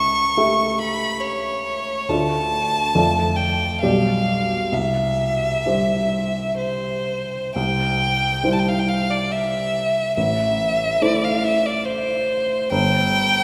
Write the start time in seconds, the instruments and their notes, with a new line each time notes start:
Already playing: grand piano C#2, violin C#6
0.37 grand piano A3 G4 E5
0.79 violin B5
1.20 violin C#5
2.09 grand piano D2 A3 F4 D5, violin A5
2.95 grand piano F2 A3 F4 D5
3.36 violin G5
3.81 grand piano B1 G3 G4 D5, violin F5
4.72 grand piano C2, violin E5
5.66 grand piano G3 G4 C5
6.58 violin C5
7.55 grand piano C2, violin G5
8.44 grand piano G3 E4 C5
8.52 violin A5
8.59 violin G5
8.68 violin F5
8.79 violin G5
8.89 violin F5
9.10 violin D5
9.31 violin E5
10.16 grand piano A1, violin E5
11.02 grand piano A3 E4 C5, violin D5
11.24 violin F5
11.44 violin E5
11.66 violin D5
11.85 violin C5
12.71 grand piano G1, violin G5